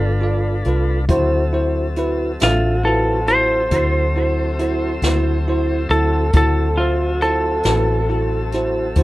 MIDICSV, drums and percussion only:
0, 0, Header, 1, 2, 480
1, 0, Start_track
1, 0, Tempo, 874636
1, 604, Time_signature, 12, 3, 24, 8
1, 4956, End_track
2, 0, Start_track
2, 0, Title_t, "Drums"
2, 354, Note_on_c, 9, 42, 52
2, 409, Note_off_c, 9, 42, 0
2, 597, Note_on_c, 9, 36, 104
2, 597, Note_on_c, 9, 42, 78
2, 652, Note_off_c, 9, 36, 0
2, 652, Note_off_c, 9, 42, 0
2, 1075, Note_on_c, 9, 42, 58
2, 1130, Note_off_c, 9, 42, 0
2, 1315, Note_on_c, 9, 42, 73
2, 1324, Note_on_c, 9, 38, 98
2, 1370, Note_off_c, 9, 42, 0
2, 1379, Note_off_c, 9, 38, 0
2, 1796, Note_on_c, 9, 42, 58
2, 1851, Note_off_c, 9, 42, 0
2, 2036, Note_on_c, 9, 42, 79
2, 2038, Note_on_c, 9, 36, 76
2, 2090, Note_off_c, 9, 42, 0
2, 2093, Note_off_c, 9, 36, 0
2, 2520, Note_on_c, 9, 42, 60
2, 2574, Note_off_c, 9, 42, 0
2, 2754, Note_on_c, 9, 42, 83
2, 2764, Note_on_c, 9, 38, 97
2, 2809, Note_off_c, 9, 42, 0
2, 2818, Note_off_c, 9, 38, 0
2, 3237, Note_on_c, 9, 42, 55
2, 3292, Note_off_c, 9, 42, 0
2, 3474, Note_on_c, 9, 42, 79
2, 3478, Note_on_c, 9, 36, 105
2, 3529, Note_off_c, 9, 42, 0
2, 3533, Note_off_c, 9, 36, 0
2, 3957, Note_on_c, 9, 42, 57
2, 4012, Note_off_c, 9, 42, 0
2, 4189, Note_on_c, 9, 42, 70
2, 4198, Note_on_c, 9, 38, 98
2, 4244, Note_off_c, 9, 42, 0
2, 4253, Note_off_c, 9, 38, 0
2, 4676, Note_on_c, 9, 42, 55
2, 4685, Note_on_c, 9, 38, 28
2, 4731, Note_off_c, 9, 42, 0
2, 4740, Note_off_c, 9, 38, 0
2, 4913, Note_on_c, 9, 42, 72
2, 4919, Note_on_c, 9, 36, 81
2, 4956, Note_off_c, 9, 36, 0
2, 4956, Note_off_c, 9, 42, 0
2, 4956, End_track
0, 0, End_of_file